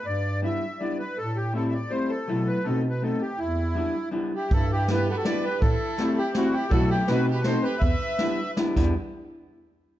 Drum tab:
CC |------|------|------|------|
HH |------|------|------|------|
SD |------|------|------|------|
BD |------|------|------|------|

CC |------|------|------|-----x|
HH |x-x-x-|x-x-x-|x-x-x-|x-x-x-|
SD |--o-o-|--o-o-|--o-o-|--o-o-|
BD |o-----|o-----|o-----|o----o|

CC |------|
HH |------|
SD |------|
BD |------|